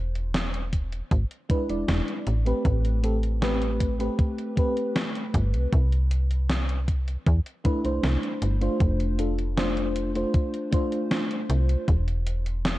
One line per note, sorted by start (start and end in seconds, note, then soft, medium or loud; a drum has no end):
0.00 1.02 E1 loud
0.15 closed hi-hat soft
0.34 snare loud
0.34 closed hi-hat medium
0.54 closed hi-hat soft
0.73 kick medium
0.73 closed hi-hat medium
0.92 closed hi-hat soft
1.11 1.25 G#1 loud
1.11 kick loud
1.11 closed hi-hat medium
1.31 closed hi-hat soft
1.49 1.64 G#3 medium
1.49 1.64 D4 medium
1.49 1.65 E4 medium
1.49 1.65 B4 loud
1.49 kick medium
1.49 closed hi-hat medium
1.69 1.84 E1 soft
1.69 2.24 G#3 medium
1.69 2.24 D4 medium
1.69 2.25 E4 medium
1.69 2.25 D5 medium
1.69 closed hi-hat soft
1.88 2.02 E1 medium
1.88 snare loud
1.88 closed hi-hat medium
2.08 closed hi-hat soft
2.27 2.53 A1 medium
2.27 closed hi-hat medium
2.45 2.99 A3 medium
2.45 2.99 C4 medium
2.45 2.99 G4 medium
2.45 2.99 B4 medium
2.45 closed hi-hat soft
2.65 4.09 A1 loud
2.65 kick loud
2.65 closed hi-hat medium
2.85 closed hi-hat soft
3.03 3.15 A3 medium
3.03 3.15 C4 medium
3.03 3.15 G4 medium
3.03 3.16 A4 medium
3.03 closed hi-hat medium
3.23 closed hi-hat soft
3.41 3.95 A3 medium
3.41 3.95 C4 medium
3.41 3.96 G4 medium
3.41 3.96 B4 medium
3.41 snare loud
3.41 closed hi-hat medium
3.62 closed hi-hat soft
3.80 kick medium
3.80 closed hi-hat medium
3.99 4.52 A3 medium
3.99 4.53 C4 medium
3.99 4.53 G4 medium
3.99 4.53 B4 medium
3.99 closed hi-hat soft
4.19 kick loud
4.19 closed hi-hat medium
4.38 closed hi-hat soft
4.56 5.70 A3 medium
4.56 5.70 C4 medium
4.56 5.71 G4 medium
4.56 5.71 B4 medium
4.56 kick medium
4.56 closed hi-hat medium
4.77 closed hi-hat soft
4.96 snare loud
4.96 closed hi-hat medium
5.15 closed hi-hat soft
5.34 5.55 G1 loud
5.34 kick medium
5.34 closed hi-hat medium
5.54 5.67 C2 medium
5.54 closed hi-hat soft
5.73 7.17 C2 medium
5.73 kick loud
5.73 closed hi-hat medium
5.92 closed hi-hat soft
6.11 closed hi-hat medium
6.31 closed hi-hat soft
6.50 snare loud
6.50 closed hi-hat medium
6.69 closed hi-hat soft
6.88 kick medium
6.88 closed hi-hat medium
7.08 closed hi-hat soft
7.27 7.40 E2 loud
7.27 kick loud
7.27 closed hi-hat medium
7.46 closed hi-hat soft
7.64 7.79 A3 medium
7.64 7.80 D4 medium
7.64 7.80 E4 medium
7.64 7.80 B4 loud
7.64 kick loud
7.64 closed hi-hat medium
7.84 8.00 C2 soft
7.84 8.57 A3 medium
7.84 8.57 D4 medium
7.84 8.57 E4 medium
7.84 8.57 C5 medium
7.84 closed hi-hat soft
8.03 8.17 C2 medium
8.03 snare loud
8.03 closed hi-hat medium
8.23 closed hi-hat soft
8.42 8.68 G1 medium
8.42 closed hi-hat medium
8.61 9.14 A3 medium
8.61 9.14 D4 medium
8.61 9.15 F4 medium
8.61 9.15 C5 medium
8.61 closed hi-hat soft
8.80 10.25 F1 loud
8.80 kick loud
8.80 closed hi-hat medium
9.00 closed hi-hat soft
9.18 9.30 A3 medium
9.18 9.30 D4 medium
9.18 9.31 F4 medium
9.18 9.31 A4 medium
9.18 closed hi-hat medium
9.38 closed hi-hat soft
9.57 10.10 A3 medium
9.57 10.11 D4 medium
9.57 10.11 F4 medium
9.57 10.11 C5 medium
9.57 snare loud
9.57 closed hi-hat medium
9.77 closed hi-hat soft
9.96 closed hi-hat medium
10.15 10.68 A3 medium
10.15 10.68 D4 medium
10.15 10.68 F4 medium
10.15 10.69 C5 medium
10.15 closed hi-hat soft
10.34 kick loud
10.34 closed hi-hat medium
10.54 closed hi-hat soft
10.71 11.85 A3 medium
10.71 11.86 D4 medium
10.71 11.86 F4 medium
10.71 11.87 C5 loud
10.71 kick loud
10.71 closed hi-hat medium
10.92 closed hi-hat soft
11.11 snare loud
11.11 closed hi-hat medium
11.31 closed hi-hat soft
11.50 11.76 C2 medium
11.50 closed hi-hat medium
11.69 closed hi-hat soft
11.88 12.79 E1 loud
11.88 kick loud
11.88 closed hi-hat medium
12.08 closed hi-hat soft
12.27 closed hi-hat medium
12.46 closed hi-hat soft
12.65 snare loud
12.65 closed hi-hat medium